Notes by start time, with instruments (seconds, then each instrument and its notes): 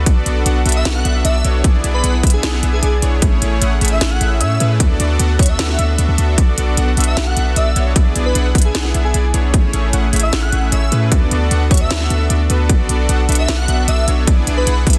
0.06 808-style bass B1, supersaw synth B3 D4 F#4 A4 D5, kick, closed hi-hat
0.26 808-style bass B1, supersaw synth B3 D4 F#4 A4 D5, closed hi-hat
0.46 808-style bass B1, supersaw synth B3 D4 F#4 A4 F#5, closed hi-hat
0.66 808-style bass B1, supersaw synth B3 D4 F#4 A4 E5, closed hi-hat
0.69 closed hi-hat
0.72 digital synth lead E5, closed hi-hat
0.85 808-style bass B1, supersaw synth B3 F#4 A4 F#5, snare, closed hi-hat
0.95 digital synth lead F#5
1.05 808-style bass B1, supersaw synth B3 D4 F#4 A4 E5, closed hi-hat
1.25 808-style bass B1, supersaw synth B3 D4 F#4 A4 D5, digital synth lead E5, closed hi-hat
1.45 808-style bass B1, supersaw synth B3 D4 F#4 A4 C#5, closed hi-hat
1.64 808-style bass B1, supersaw synth B3 D4 E4 G#4 D5, kick, closed hi-hat
1.84 808-style bass B1, supersaw synth B3 D4 E4 G#4 D5, closed hi-hat
1.94 digital synth lead B4
2.04 808-style bass B1, supersaw synth B3 D4 E4 G#4 F#5, closed hi-hat
2.23 808-style bass B1, supersaw synth B3 E4 G#4 E5, kick, closed hi-hat
2.27 closed hi-hat
2.30 digital synth lead G#4, closed hi-hat
2.43 808-style bass B1, supersaw synth B3 D4 E4 G#4 F#5, digital synth lead G#4, snare, closed hi-hat
2.53 snare
2.63 808-style bass B1, supersaw synth B3 D4 E4 G#4 E5, closed hi-hat
2.73 digital synth lead G#4
2.83 808-style bass B1, supersaw synth B3 D4 E4 G#4 D5, digital synth lead G#4, closed hi-hat
3.02 808-style bass B1, supersaw synth B3 D4 E4 G#4 C#5, closed hi-hat
3.22 808-style bass A1, supersaw synth A3 C#4 E4 G#4 C#5, kick, closed hi-hat
3.42 808-style bass A1, supersaw synth A3 C#4 E4 G#4 C#5, closed hi-hat
3.62 808-style bass A1, supersaw synth A3 C#4 E4 G#4 F#5, closed hi-hat
3.81 808-style bass A1, supersaw synth A3 C#4 E4 G#4 E5, closed hi-hat
3.85 closed hi-hat
3.88 digital synth lead E5, closed hi-hat
4.01 808-style bass A1, supersaw synth A3 C#4 E4 G#4 F#5, snare, closed hi-hat
4.11 digital synth lead F#5
4.21 808-style bass A1, supersaw synth A3 C#4 E4 G#4 E5, closed hi-hat
4.41 808-style bass A2, supersaw synth A3 C#4 E4 G#4 C#5, digital synth lead E5, closed hi-hat
4.60 808-style bass A2, supersaw synth A3 C#4 E4 G#4 B4, closed hi-hat
4.80 808-style bass D2, supersaw synth B3 D4 F#4 A4 D5, kick, closed hi-hat
5.00 808-style bass D2, supersaw synth B3 D4 F#4 A4 D5, closed hi-hat
5.20 808-style bass D2, supersaw synth B3 D4 F#4 A4 F#5, closed hi-hat
5.39 808-style bass D2, supersaw synth B3 D4 F#4 A4 E5, digital synth lead C#5, kick, closed hi-hat
5.43 closed hi-hat
5.46 digital synth lead E5, closed hi-hat
5.59 808-style bass D2, supersaw synth B3 D4 F#4 A4 F#5, snare, closed hi-hat
5.69 snare
5.79 808-style bass D2, supersaw synth B3 D4 F#4 A4 E5, closed hi-hat
5.98 808-style bass D2, supersaw synth B3 D4 F#4 A4 E5, closed hi-hat
6.08 808-style bass D2, supersaw synth B3 D4 F#4 A4 E5
6.18 808-style bass D2, supersaw synth B3 D4 F#4 A4 E5, closed hi-hat
6.38 808-style bass B1, supersaw synth B3 D4 F#4 A4 D5, kick, closed hi-hat
6.58 808-style bass B1, supersaw synth B3 D4 F#4 A4 D5, closed hi-hat
6.77 808-style bass B1, supersaw synth B3 D4 F#4 A4 F#5, closed hi-hat
6.97 808-style bass B1, supersaw synth B3 D4 F#4 A4 E5, closed hi-hat
7.00 closed hi-hat
7.04 digital synth lead E5, closed hi-hat
7.17 808-style bass B1, supersaw synth F#4 A4, snare, closed hi-hat
7.27 digital synth lead F#5
7.37 808-style bass B1, supersaw synth B3 D4 F#4 A4 E5, closed hi-hat
7.56 808-style bass B1, supersaw synth B3 D4 F#4 A4 D5, digital synth lead E5, closed hi-hat
7.76 808-style bass B1, supersaw synth B3 D4 F#4 A4 C#5, closed hi-hat
7.96 808-style bass B1, supersaw synth B3 D4 D5, kick, closed hi-hat
8.16 808-style bass B1, supersaw synth B3 D4 E4 G#4 D5, closed hi-hat
8.25 digital synth lead B4
8.35 808-style bass B1, supersaw synth B3 D4 E4 G#4 F#5, closed hi-hat
8.55 808-style bass B1, supersaw synth B3 D4 E4 G#4 E5, kick, closed hi-hat
8.58 closed hi-hat
8.62 digital synth lead G#4, closed hi-hat
8.75 808-style bass B1, supersaw synth B3 D4 E4 G#4 F#5, digital synth lead G#4, snare, closed hi-hat
8.85 snare
8.94 808-style bass B1, supersaw synth B3 D4 E4 G#4 E5, closed hi-hat
9.05 digital synth lead G#4
9.14 808-style bass B1, supersaw synth B3 D4 E4 G#4 D5, digital synth lead G#4, closed hi-hat
9.34 808-style bass B1, supersaw synth B3 D4 E4 G#4 C#5, closed hi-hat
9.54 808-style bass A1, supersaw synth A3 C#4 E4 G#4 C#5, kick, closed hi-hat
9.73 808-style bass A1, supersaw synth A3 C#4 E4 G#4 C#5, closed hi-hat
9.93 808-style bass A1, supersaw synth A3 C#4 E4 G#4 F#5, closed hi-hat
10.13 808-style bass A1, supersaw synth A3 C#4 E4 G#4 E5, closed hi-hat
10.16 closed hi-hat
10.20 digital synth lead E5, closed hi-hat
10.33 808-style bass A1, supersaw synth A3 C#4 E4 G#4 F#5, snare, closed hi-hat
10.43 digital synth lead F#5
10.52 808-style bass A1, supersaw synth A3 C#4 E4 G#4 E5, closed hi-hat
10.72 808-style bass A1, supersaw synth A3 C#4 E4 G#4 C#5, digital synth lead E5, closed hi-hat
10.92 808-style bass A2, supersaw synth A3 C#4 E4 G#4 B4, closed hi-hat
11.12 808-style bass D2, supersaw synth B3 D4 F#4 A4 D5, kick, closed hi-hat
11.31 808-style bass D2, supersaw synth B3 D4 F#4 A4 D5, closed hi-hat
11.51 808-style bass D2, supersaw synth B3 D4 F#4 A4 F#5, closed hi-hat
11.71 808-style bass D2, supersaw synth B3 F#4 A4 E5, digital synth lead C#5, kick, closed hi-hat
11.74 closed hi-hat
11.77 digital synth lead E5, closed hi-hat
11.91 808-style bass D2, supersaw synth B3 D4 F#4 A4 F#5, snare, closed hi-hat
12.01 snare
12.10 808-style bass D2, supersaw synth B3 D4 F#4 A4 E5, closed hi-hat
12.30 808-style bass D2, supersaw synth B3 D4 F#4 A4 D5, closed hi-hat
12.50 808-style bass D2, supersaw synth B3 D4 F#4 A4 B4, closed hi-hat
12.69 808-style bass B1, supersaw synth B3 D4 F#4 A4 D5, kick, closed hi-hat
12.89 808-style bass B1, supersaw synth B3 D4 F#4 A4 D5, closed hi-hat
13.09 808-style bass B1, supersaw synth B3 D4 F#4 A4 F#5, closed hi-hat
13.29 808-style bass B1, supersaw synth B3 D4 F#4 A4 E5, closed hi-hat
13.32 closed hi-hat
13.35 digital synth lead E5, closed hi-hat
13.48 808-style bass B1, supersaw synth B3 D4 F#4 A4 F#5, snare, closed hi-hat
13.58 digital synth lead F#5
13.68 808-style bass B1, supersaw synth B3 D4 F#4 A4 E5, closed hi-hat
13.88 808-style bass B1, supersaw synth B3 D4 F#4 A4 D5, digital synth lead E5, closed hi-hat
14.08 808-style bass B1, supersaw synth B3 D4 F#4 A4 C#5, closed hi-hat
14.27 808-style bass B1, supersaw synth B3 D4 E4 G#4 D5, kick, closed hi-hat
14.47 808-style bass B1, supersaw synth B3 D4 E4 G#4 D5, closed hi-hat
14.57 digital synth lead B4
14.67 808-style bass B1, supersaw synth B3 D4 E4 G#4 F#5, closed hi-hat
14.87 808-style bass B1, supersaw synth B3 D4 E4 G#4 E5, kick, closed hi-hat
14.90 closed hi-hat
14.93 closed hi-hat